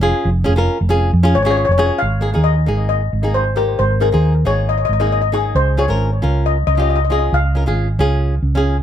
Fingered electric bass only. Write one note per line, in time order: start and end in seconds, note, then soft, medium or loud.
0.00 0.12 F1 medium
0.25 0.45 F1 loud
0.47 0.67 F1 medium
0.81 1.11 F1 medium
1.13 1.33 F2 medium
1.35 1.66 G#1 medium
1.69 1.89 F1 medium
2.02 2.33 G#1 medium
2.36 2.66 D#2 medium
2.68 3.09 G#1 medium
3.13 3.75 G#1 medium
3.79 4.10 G#1 medium
4.14 4.44 D#2 medium
4.45 4.86 G#1 medium
4.89 5.52 G#1 medium
5.55 5.87 C#2 medium
5.89 6.20 G#1 medium
6.23 6.64 C#2 medium
6.67 7.30 C#2 medium
7.33 7.64 C#2 medium
7.67 7.98 G#1 medium
7.99 8.41 C#2 medium
8.42 8.83 C#2 medium